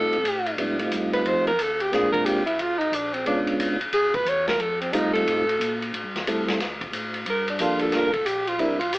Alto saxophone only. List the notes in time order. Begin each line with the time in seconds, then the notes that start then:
Already playing: A4
1.13 B4
1.28 C5
1.47 A#4
1.62 A4
1.82 G4
1.94 G#4
2.12 A#4
2.26 G4
2.46 E4
2.61 F4
2.79 D#4
2.94 D4
3.14 C4
3.27 D4
3.94 G#4
4.15 B4
4.29 C#5
4.49 A#4
4.61 A4
4.81 C4
4.93 D#4
5.14 A4
7.30 A#4
7.50 D4
7.61 F4
7.82 A4
7.95 A#4
8.13 A4
8.26 G4
8.48 F4
8.60 E4
8.79 F4
8.94 G4